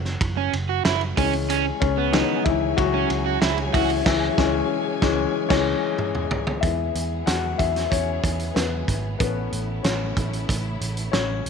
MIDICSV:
0, 0, Header, 1, 6, 480
1, 0, Start_track
1, 0, Tempo, 642398
1, 1116, Time_signature, 4, 2, 24, 8
1, 8589, End_track
2, 0, Start_track
2, 0, Title_t, "Overdriven electric guitar"
2, 0, Program_c, 0, 29
2, 278, Note_on_c, 0, 61, 75
2, 392, Note_off_c, 0, 61, 0
2, 517, Note_on_c, 0, 66, 73
2, 631, Note_off_c, 0, 66, 0
2, 636, Note_on_c, 0, 64, 75
2, 750, Note_off_c, 0, 64, 0
2, 878, Note_on_c, 0, 61, 76
2, 991, Note_off_c, 0, 61, 0
2, 1118, Note_on_c, 0, 61, 110
2, 1231, Note_off_c, 0, 61, 0
2, 1478, Note_on_c, 0, 59, 67
2, 1815, Note_off_c, 0, 59, 0
2, 2196, Note_on_c, 0, 61, 75
2, 2309, Note_off_c, 0, 61, 0
2, 2434, Note_on_c, 0, 66, 78
2, 2548, Note_off_c, 0, 66, 0
2, 2553, Note_on_c, 0, 64, 72
2, 2667, Note_off_c, 0, 64, 0
2, 2794, Note_on_c, 0, 66, 80
2, 2908, Note_off_c, 0, 66, 0
2, 8589, End_track
3, 0, Start_track
3, 0, Title_t, "Grand piano"
3, 0, Program_c, 1, 0
3, 0, Control_c, 1, 64, 127
3, 0, Note_on_c, 1, 54, 60
3, 0, Note_on_c, 1, 58, 53
3, 0, Note_on_c, 1, 61, 64
3, 0, Note_on_c, 1, 66, 114
3, 361, Note_off_c, 1, 66, 0
3, 870, Note_on_c, 1, 52, 60
3, 874, Note_on_c, 1, 56, 57
3, 877, Note_off_c, 1, 61, 0
3, 877, Note_on_c, 1, 61, 65
3, 887, Control_c, 1, 64, 0
3, 888, Note_off_c, 1, 58, 0
3, 894, Note_off_c, 1, 54, 0
3, 1032, Control_c, 1, 64, 127
3, 1334, Note_off_c, 1, 61, 0
3, 1345, Note_on_c, 1, 61, 81
3, 1357, Note_on_c, 1, 49, 65
3, 1562, Note_off_c, 1, 52, 0
3, 1564, Note_off_c, 1, 56, 0
3, 1573, Note_off_c, 1, 61, 0
3, 1579, Note_off_c, 1, 49, 0
3, 1588, Note_on_c, 1, 63, 92
3, 1590, Note_on_c, 1, 52, 51
3, 1594, Note_on_c, 1, 56, 47
3, 1597, Note_on_c, 1, 61, 54
3, 1600, Note_on_c, 1, 51, 73
3, 1808, Note_off_c, 1, 52, 0
3, 1810, Note_off_c, 1, 56, 0
3, 1812, Note_off_c, 1, 61, 0
3, 1821, Note_off_c, 1, 51, 0
3, 1827, Note_on_c, 1, 64, 93
3, 1839, Note_off_c, 1, 63, 0
3, 1840, Note_on_c, 1, 52, 77
3, 2054, Note_off_c, 1, 64, 0
3, 2061, Note_off_c, 1, 52, 0
3, 2069, Note_on_c, 1, 66, 103
3, 2076, Note_on_c, 1, 54, 81
3, 2764, Note_off_c, 1, 54, 0
3, 2788, Note_on_c, 1, 64, 91
3, 2798, Note_on_c, 1, 52, 76
3, 2812, Note_off_c, 1, 66, 0
3, 3014, Note_off_c, 1, 64, 0
3, 3019, Note_off_c, 1, 52, 0
3, 3031, Note_on_c, 1, 64, 109
3, 3038, Note_on_c, 1, 52, 102
3, 3195, Note_off_c, 1, 64, 0
3, 3199, Note_off_c, 1, 52, 0
3, 3267, Note_on_c, 1, 52, 101
3, 3272, Note_on_c, 1, 56, 91
3, 3277, Note_on_c, 1, 61, 94
3, 3433, Note_off_c, 1, 52, 0
3, 3435, Note_off_c, 1, 56, 0
3, 3439, Note_off_c, 1, 61, 0
3, 3748, Note_on_c, 1, 52, 107
3, 3753, Note_on_c, 1, 56, 96
3, 3756, Note_on_c, 1, 61, 95
3, 3913, Note_off_c, 1, 52, 0
3, 3916, Note_off_c, 1, 56, 0
3, 3918, Note_off_c, 1, 61, 0
3, 4100, Note_on_c, 1, 73, 99
3, 4109, Note_on_c, 1, 52, 106
3, 4113, Note_on_c, 1, 56, 91
3, 4118, Note_on_c, 1, 61, 96
3, 4268, Note_off_c, 1, 73, 0
3, 4273, Note_off_c, 1, 52, 0
3, 4276, Note_off_c, 1, 56, 0
3, 4279, Note_off_c, 1, 61, 0
3, 4938, Note_on_c, 1, 76, 89
3, 4945, Note_on_c, 1, 56, 45
3, 4950, Note_on_c, 1, 59, 45
3, 4955, Note_on_c, 1, 64, 67
3, 4961, Control_c, 1, 64, 0
3, 5092, Control_c, 1, 64, 127
3, 5268, Note_off_c, 1, 56, 0
3, 5270, Note_off_c, 1, 59, 0
3, 5404, Note_off_c, 1, 64, 0
3, 5425, Note_on_c, 1, 78, 85
3, 5440, Note_off_c, 1, 76, 0
3, 5441, Note_on_c, 1, 66, 62
3, 5660, Note_off_c, 1, 66, 0
3, 5666, Note_on_c, 1, 76, 79
3, 5676, Note_off_c, 1, 78, 0
3, 5685, Note_on_c, 1, 64, 62
3, 5721, Note_off_c, 1, 76, 0
3, 5737, Note_off_c, 1, 64, 0
3, 5905, Note_on_c, 1, 73, 75
3, 5922, Note_on_c, 1, 61, 59
3, 6360, Note_off_c, 1, 73, 0
3, 6368, Note_off_c, 1, 61, 0
3, 6385, Note_on_c, 1, 71, 72
3, 6401, Note_on_c, 1, 59, 51
3, 6840, Note_off_c, 1, 71, 0
3, 6848, Note_off_c, 1, 59, 0
3, 6864, Note_on_c, 1, 71, 76
3, 6870, Note_on_c, 1, 57, 52
3, 6875, Note_on_c, 1, 59, 65
3, 6879, Note_on_c, 1, 61, 55
3, 6884, Control_c, 1, 64, 0
3, 7030, Control_c, 1, 64, 127
3, 7192, Note_off_c, 1, 57, 0
3, 7197, Note_off_c, 1, 61, 0
3, 7320, Note_off_c, 1, 71, 0
3, 7328, Note_off_c, 1, 59, 0
3, 7346, Note_on_c, 1, 73, 65
3, 7359, Note_on_c, 1, 61, 56
3, 8043, Note_off_c, 1, 73, 0
3, 8049, Note_off_c, 1, 61, 0
3, 8306, Note_on_c, 1, 73, 75
3, 8322, Note_on_c, 1, 61, 59
3, 8589, Note_off_c, 1, 61, 0
3, 8589, Note_off_c, 1, 73, 0
3, 8589, End_track
4, 0, Start_track
4, 0, Title_t, "String section"
4, 0, Program_c, 2, 48
4, 1118, Note_on_c, 2, 61, 82
4, 1118, Note_on_c, 2, 73, 65
4, 1120, Note_on_c, 2, 68, 72
4, 1121, Note_on_c, 2, 80, 83
4, 4923, Note_off_c, 2, 61, 0
4, 4923, Note_off_c, 2, 73, 0
4, 4924, Note_off_c, 2, 68, 0
4, 4924, Note_off_c, 2, 80, 0
4, 4955, Note_on_c, 2, 56, 56
4, 4955, Note_on_c, 2, 68, 63
4, 4958, Note_on_c, 2, 59, 53
4, 4959, Note_on_c, 2, 52, 65
4, 6857, Note_off_c, 2, 56, 0
4, 6857, Note_off_c, 2, 68, 0
4, 6858, Note_off_c, 2, 52, 0
4, 6875, Note_on_c, 2, 57, 61
4, 6878, Note_on_c, 2, 49, 67
4, 6878, Note_on_c, 2, 64, 71
4, 8589, Note_off_c, 2, 49, 0
4, 8589, Note_off_c, 2, 57, 0
4, 8589, Note_off_c, 2, 59, 0
4, 8589, Note_off_c, 2, 64, 0
4, 8589, End_track
5, 0, Start_track
5, 0, Title_t, "Picked electric bass"
5, 0, Program_c, 3, 34
5, 0, Note_on_c, 3, 30, 89
5, 114, Note_off_c, 3, 30, 0
5, 156, Note_on_c, 3, 30, 99
5, 353, Note_off_c, 3, 30, 0
5, 400, Note_on_c, 3, 30, 100
5, 596, Note_off_c, 3, 30, 0
5, 639, Note_on_c, 3, 30, 103
5, 835, Note_off_c, 3, 30, 0
5, 876, Note_on_c, 3, 37, 109
5, 1269, Note_off_c, 3, 37, 0
5, 1357, Note_on_c, 3, 37, 95
5, 1651, Note_off_c, 3, 37, 0
5, 1835, Note_on_c, 3, 37, 97
5, 2032, Note_off_c, 3, 37, 0
5, 2077, Note_on_c, 3, 37, 101
5, 2272, Note_off_c, 3, 37, 0
5, 2316, Note_on_c, 3, 37, 101
5, 2512, Note_off_c, 3, 37, 0
5, 2554, Note_on_c, 3, 37, 101
5, 2750, Note_off_c, 3, 37, 0
5, 2795, Note_on_c, 3, 37, 104
5, 2991, Note_off_c, 3, 37, 0
5, 3035, Note_on_c, 3, 37, 112
5, 3197, Note_off_c, 3, 37, 0
5, 3273, Note_on_c, 3, 37, 105
5, 3436, Note_off_c, 3, 37, 0
5, 3754, Note_on_c, 3, 37, 98
5, 3917, Note_off_c, 3, 37, 0
5, 4112, Note_on_c, 3, 37, 100
5, 4275, Note_off_c, 3, 37, 0
5, 4953, Note_on_c, 3, 40, 90
5, 5150, Note_off_c, 3, 40, 0
5, 5192, Note_on_c, 3, 40, 74
5, 5389, Note_off_c, 3, 40, 0
5, 5431, Note_on_c, 3, 40, 82
5, 5629, Note_off_c, 3, 40, 0
5, 5674, Note_on_c, 3, 40, 80
5, 5871, Note_off_c, 3, 40, 0
5, 5915, Note_on_c, 3, 40, 89
5, 6111, Note_off_c, 3, 40, 0
5, 6153, Note_on_c, 3, 40, 77
5, 6350, Note_off_c, 3, 40, 0
5, 6394, Note_on_c, 3, 40, 97
5, 6591, Note_off_c, 3, 40, 0
5, 6637, Note_on_c, 3, 32, 79
5, 6833, Note_off_c, 3, 32, 0
5, 6875, Note_on_c, 3, 33, 93
5, 7072, Note_off_c, 3, 33, 0
5, 7117, Note_on_c, 3, 33, 88
5, 7314, Note_off_c, 3, 33, 0
5, 7358, Note_on_c, 3, 33, 85
5, 7554, Note_off_c, 3, 33, 0
5, 7598, Note_on_c, 3, 33, 88
5, 7794, Note_off_c, 3, 33, 0
5, 7838, Note_on_c, 3, 33, 92
5, 8034, Note_off_c, 3, 33, 0
5, 8078, Note_on_c, 3, 33, 82
5, 8275, Note_off_c, 3, 33, 0
5, 8320, Note_on_c, 3, 33, 99
5, 8516, Note_off_c, 3, 33, 0
5, 8562, Note_on_c, 3, 28, 78
5, 8589, Note_off_c, 3, 28, 0
5, 8589, End_track
6, 0, Start_track
6, 0, Title_t, "Drums"
6, 37, Note_on_c, 9, 38, 37
6, 112, Note_off_c, 9, 38, 0
6, 156, Note_on_c, 9, 36, 100
6, 158, Note_on_c, 9, 51, 76
6, 231, Note_off_c, 9, 36, 0
6, 233, Note_off_c, 9, 51, 0
6, 398, Note_on_c, 9, 51, 64
6, 473, Note_off_c, 9, 51, 0
6, 634, Note_on_c, 9, 38, 109
6, 637, Note_on_c, 9, 51, 62
6, 709, Note_off_c, 9, 38, 0
6, 712, Note_off_c, 9, 51, 0
6, 754, Note_on_c, 9, 51, 41
6, 829, Note_off_c, 9, 51, 0
6, 877, Note_on_c, 9, 36, 97
6, 881, Note_on_c, 9, 46, 67
6, 881, Note_on_c, 9, 51, 61
6, 952, Note_off_c, 9, 36, 0
6, 955, Note_off_c, 9, 46, 0
6, 955, Note_off_c, 9, 51, 0
6, 995, Note_on_c, 9, 51, 40
6, 1070, Note_off_c, 9, 51, 0
6, 1118, Note_on_c, 9, 44, 68
6, 1118, Note_on_c, 9, 51, 72
6, 1192, Note_off_c, 9, 44, 0
6, 1192, Note_off_c, 9, 51, 0
6, 1357, Note_on_c, 9, 36, 91
6, 1357, Note_on_c, 9, 51, 60
6, 1431, Note_off_c, 9, 51, 0
6, 1432, Note_off_c, 9, 36, 0
6, 1593, Note_on_c, 9, 51, 73
6, 1597, Note_on_c, 9, 38, 108
6, 1667, Note_off_c, 9, 51, 0
6, 1672, Note_off_c, 9, 38, 0
6, 1836, Note_on_c, 9, 36, 93
6, 1838, Note_on_c, 9, 51, 55
6, 1911, Note_off_c, 9, 36, 0
6, 1913, Note_off_c, 9, 51, 0
6, 2075, Note_on_c, 9, 36, 89
6, 2077, Note_on_c, 9, 51, 73
6, 2150, Note_off_c, 9, 36, 0
6, 2152, Note_off_c, 9, 51, 0
6, 2315, Note_on_c, 9, 51, 60
6, 2390, Note_off_c, 9, 51, 0
6, 2552, Note_on_c, 9, 38, 110
6, 2555, Note_on_c, 9, 51, 62
6, 2627, Note_off_c, 9, 38, 0
6, 2630, Note_off_c, 9, 51, 0
6, 2672, Note_on_c, 9, 51, 40
6, 2747, Note_off_c, 9, 51, 0
6, 2795, Note_on_c, 9, 36, 101
6, 2798, Note_on_c, 9, 46, 75
6, 2798, Note_on_c, 9, 51, 63
6, 2870, Note_off_c, 9, 36, 0
6, 2873, Note_off_c, 9, 46, 0
6, 2873, Note_off_c, 9, 51, 0
6, 2912, Note_on_c, 9, 51, 41
6, 2987, Note_off_c, 9, 51, 0
6, 3034, Note_on_c, 9, 36, 115
6, 3034, Note_on_c, 9, 38, 115
6, 3034, Note_on_c, 9, 49, 91
6, 3108, Note_off_c, 9, 36, 0
6, 3108, Note_off_c, 9, 38, 0
6, 3108, Note_off_c, 9, 49, 0
6, 3272, Note_on_c, 9, 38, 99
6, 3273, Note_on_c, 9, 36, 114
6, 3347, Note_off_c, 9, 38, 0
6, 3348, Note_off_c, 9, 36, 0
6, 3752, Note_on_c, 9, 38, 98
6, 3753, Note_on_c, 9, 36, 106
6, 3827, Note_off_c, 9, 36, 0
6, 3827, Note_off_c, 9, 38, 0
6, 4112, Note_on_c, 9, 36, 116
6, 4112, Note_on_c, 9, 38, 105
6, 4112, Note_on_c, 9, 49, 81
6, 4186, Note_off_c, 9, 38, 0
6, 4186, Note_off_c, 9, 49, 0
6, 4187, Note_off_c, 9, 36, 0
6, 4472, Note_on_c, 9, 47, 98
6, 4547, Note_off_c, 9, 47, 0
6, 4594, Note_on_c, 9, 45, 81
6, 4669, Note_off_c, 9, 45, 0
6, 4715, Note_on_c, 9, 43, 107
6, 4789, Note_off_c, 9, 43, 0
6, 4834, Note_on_c, 9, 43, 95
6, 4909, Note_off_c, 9, 43, 0
6, 4953, Note_on_c, 9, 36, 102
6, 4954, Note_on_c, 9, 42, 75
6, 5028, Note_off_c, 9, 36, 0
6, 5029, Note_off_c, 9, 42, 0
6, 5195, Note_on_c, 9, 42, 62
6, 5270, Note_off_c, 9, 42, 0
6, 5431, Note_on_c, 9, 42, 76
6, 5435, Note_on_c, 9, 38, 88
6, 5506, Note_off_c, 9, 42, 0
6, 5510, Note_off_c, 9, 38, 0
6, 5674, Note_on_c, 9, 36, 85
6, 5677, Note_on_c, 9, 42, 53
6, 5749, Note_off_c, 9, 36, 0
6, 5752, Note_off_c, 9, 42, 0
6, 5799, Note_on_c, 9, 38, 30
6, 5799, Note_on_c, 9, 42, 44
6, 5873, Note_off_c, 9, 42, 0
6, 5874, Note_off_c, 9, 38, 0
6, 5915, Note_on_c, 9, 36, 83
6, 5921, Note_on_c, 9, 42, 74
6, 5990, Note_off_c, 9, 36, 0
6, 5996, Note_off_c, 9, 42, 0
6, 6153, Note_on_c, 9, 36, 88
6, 6159, Note_on_c, 9, 42, 64
6, 6228, Note_off_c, 9, 36, 0
6, 6234, Note_off_c, 9, 42, 0
6, 6272, Note_on_c, 9, 42, 48
6, 6347, Note_off_c, 9, 42, 0
6, 6397, Note_on_c, 9, 38, 92
6, 6399, Note_on_c, 9, 42, 63
6, 6472, Note_off_c, 9, 38, 0
6, 6474, Note_off_c, 9, 42, 0
6, 6636, Note_on_c, 9, 36, 76
6, 6640, Note_on_c, 9, 42, 66
6, 6711, Note_off_c, 9, 36, 0
6, 6715, Note_off_c, 9, 42, 0
6, 6875, Note_on_c, 9, 36, 109
6, 6876, Note_on_c, 9, 42, 79
6, 6950, Note_off_c, 9, 36, 0
6, 6951, Note_off_c, 9, 42, 0
6, 7116, Note_on_c, 9, 42, 57
6, 7191, Note_off_c, 9, 42, 0
6, 7354, Note_on_c, 9, 42, 72
6, 7358, Note_on_c, 9, 38, 90
6, 7428, Note_off_c, 9, 42, 0
6, 7432, Note_off_c, 9, 38, 0
6, 7597, Note_on_c, 9, 36, 82
6, 7600, Note_on_c, 9, 42, 58
6, 7672, Note_off_c, 9, 36, 0
6, 7674, Note_off_c, 9, 42, 0
6, 7719, Note_on_c, 9, 42, 48
6, 7794, Note_off_c, 9, 42, 0
6, 7838, Note_on_c, 9, 36, 82
6, 7843, Note_on_c, 9, 42, 83
6, 7912, Note_off_c, 9, 36, 0
6, 7918, Note_off_c, 9, 42, 0
6, 8080, Note_on_c, 9, 42, 64
6, 8154, Note_off_c, 9, 42, 0
6, 8195, Note_on_c, 9, 42, 49
6, 8270, Note_off_c, 9, 42, 0
6, 8318, Note_on_c, 9, 38, 95
6, 8321, Note_on_c, 9, 42, 61
6, 8393, Note_off_c, 9, 38, 0
6, 8396, Note_off_c, 9, 42, 0
6, 8563, Note_on_c, 9, 42, 67
6, 8589, Note_off_c, 9, 42, 0
6, 8589, End_track
0, 0, End_of_file